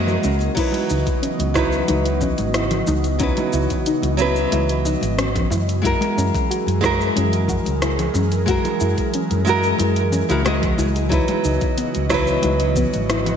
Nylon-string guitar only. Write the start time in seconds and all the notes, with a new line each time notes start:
Already playing: G#3 E4 F#4 D#5
0.55 F#3 D#4 E4
0.59 B4
1.54 F#3 D#4 E4
1.59 B4
3.19 F#3 D#4 E4
3.23 B4
4.17 F#3 D#4 E4
4.22 B4
5.82 G#3 E4 F#4
5.86 A#4
6.81 G#3 E4 F#4
6.85 A#4
8.46 G#3 E4 F#4
8.50 A#4
9.45 G#3 E4 F#4
9.49 A#4
10.29 G#3 E4 F#4 A#4
10.45 G#3 E4 F#4 D#5
11.09 F#3 D#4 E4
11.13 B4
12.09 F#3 D#4 E4
12.14 B4